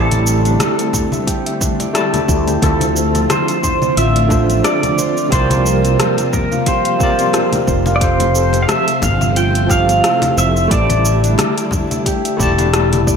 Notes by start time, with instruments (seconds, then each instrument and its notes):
Already playing: fretless electric bass A1, string machine D3 G3 A3 C4, tine electric piano A3 E4 G4 D5 A5, harp C4 D4 E4 A4 C5 E5, pedal steel guitar A4
0.11 closed hi-hat, muted conga, high conga, cabasa
0.26 harp A4, cabasa
0.45 harp D4, closed hi-hat, cabasa
0.60 cross-stick, closed hi-hat, muted conga, high conga, cabasa
0.79 closed hi-hat, cabasa
0.93 kick, low conga, cabasa
1.12 harp E5, high conga, cabasa
1.27 harp G4, kick, closed hi-hat, muted conga, cabasa
1.46 harp E5, closed hi-hat
1.61 harp D4, kick, high conga, cabasa
1.80 harp D5, closed hi-hat, muted conga, cabasa
1.93 tine electric piano A3 E4 G4 D5 A5, harp D4, cross-stick, closed hi-hat, cabasa
2.13 harp E4, closed hi-hat, high conga, cabasa
2.28 fretless electric bass D2, harp A4, kick, cabasa
2.47 harp G4, closed hi-hat, muted conga, cabasa
2.60 fretless electric bass D2, tine electric piano D3 D4 F4, string machine D3 F3 A3 C4 F4, harp C4, kick, closed hi-hat, muted conga, cabasa
2.64 pedal steel guitar A4, tine electric piano C5 E5
2.81 closed hi-hat, high conga, cabasa
2.96 harp A4, cabasa
3.14 harp C4, closed hi-hat, muted conga, cabasa
3.30 pedal steel guitar C5, cross-stick, closed hi-hat, high conga, cabasa
3.48 closed hi-hat, cabasa
3.63 pedal steel guitar C5, kick, low conga, cabasa
3.82 harp D5, muted conga, high conga, cabasa
3.97 fretless electric bass A1, harp F4, pedal steel guitar E5, closed hi-hat, cabasa
4.16 harp D5, closed hi-hat
4.28 tine electric piano D3 D4 F4, harp A4, kick, muted conga, high conga, cabasa
4.32 tine electric piano C5 E5
4.49 harp C4, closed hi-hat, cabasa
4.64 harp D4, pedal steel guitar D5, cross-stick, closed hi-hat, cabasa
4.83 closed hi-hat, high conga, cabasa
4.98 harp C5, muted conga, cabasa
5.17 harp D5, cabasa
5.29 fretless electric bass C2, tine electric piano C3 C4 F4, string machine C3 G3 A#3, harp C4, pedal steel guitar C5, kick, closed hi-hat, cabasa
5.33 tine electric piano A#4 D5
5.50 closed hi-hat, muted conga, high conga, cabasa
5.65 harp A#4, cabasa
5.84 harp C4, closed hi-hat, cabasa
5.99 cross-stick, closed hi-hat, high conga, cabasa
6.18 closed hi-hat, muted conga, cabasa
6.33 pedal steel guitar A#4, kick, low conga, cabasa
6.51 harp F5, high conga, cabasa
6.66 harp G4, pedal steel guitar C5, kick, closed hi-hat, muted conga, cabasa
6.85 harp F5, closed hi-hat
6.97 tine electric piano C3 C4 F4, harp A#4, kick, high conga, cabasa
7.02 tine electric piano A#4 D5
7.18 harp C4, closed hi-hat, cabasa
7.33 harp F4, cross-stick, closed hi-hat, muted conga, cabasa
7.53 closed hi-hat, high conga, cabasa
7.67 fretless electric bass F1, harp C5, kick, cabasa
7.86 harp F5, muted conga, cabasa
7.96 tine electric piano F3 C4, pedal steel guitar D5
8.01 string machine C3 A3 C5, harp C4, tine electric piano G4 A4 C5, pedal steel guitar C5, kick, closed hi-hat, cabasa
8.20 closed hi-hat, high conga, cabasa
8.35 harp A4, cabasa
8.53 harp C4, closed hi-hat, muted conga, cabasa
8.62 pedal steel guitar F5
8.68 pedal steel guitar E5, cross-stick, closed hi-hat, high conga, cabasa
8.88 closed hi-hat, cabasa
9.02 fretless electric bass G1, pedal steel guitar F5, kick, muted conga, low conga, cabasa
9.21 harp E5, high conga, cabasa
9.36 harp F4, pedal steel guitar G5, closed hi-hat, cabasa
9.55 harp E5, closed hi-hat
9.67 tine electric piano F3 C4 G4, harp A4, pedal steel guitar F5, kick, muted conga, high conga, cabasa
9.71 tine electric piano A4 F5
9.88 harp C4, closed hi-hat, cabasa
10.03 harp E4, cross-stick, closed hi-hat, cabasa
10.22 closed hi-hat, muted conga, high conga, cabasa
10.37 fretless electric bass F1, harp C5, pedal steel guitar E5, cabasa
10.56 harp E5, cabasa
10.68 fretless electric bass A1, string machine D3 G3 E4, tine electric piano A3 E4 G4, harp D4, pedal steel guitar D5, kick, closed hi-hat, cabasa
10.72 tine electric piano D5 A5
10.90 closed hi-hat, muted conga, high conga, cabasa
11.05 harp A4, cabasa
11.24 harp D4, closed hi-hat, cabasa
11.38 cross-stick, closed hi-hat, muted conga, high conga, cabasa
11.58 closed hi-hat, cabasa
11.71 kick, low conga, cabasa
11.91 harp E5, closed hi-hat, high conga, cabasa
12.06 harp G4, kick, closed hi-hat, muted conga, cabasa
12.25 harp E5, closed hi-hat, cabasa
12.37 fretless electric bass E1, tine electric piano A3 E4 G4, harp A4, kick, high conga, cabasa
12.41 tine electric piano D5 A5
12.58 harp D4, closed hi-hat, muted conga, cabasa
12.73 harp E4, cross-stick, closed hi-hat, cabasa
12.93 closed hi-hat, high conga, cabasa
13.07 harp D5, kick, cabasa